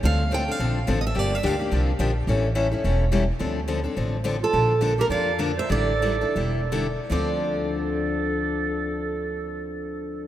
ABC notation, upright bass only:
X:1
M:4/4
L:1/8
Q:"Swing" 1/4=213
K:Dm
V:1 name="Upright bass" clef=bass
D,,4 B,,,2 A,,,2 | G,,,2 D,,2 C,,2 B,,,2 | A,,,4 E,,,4 | D,,4 A,,,4 |
B,,,4 F,,4 | A,,,4 E,,,4 | D,,8- | D,,8 |]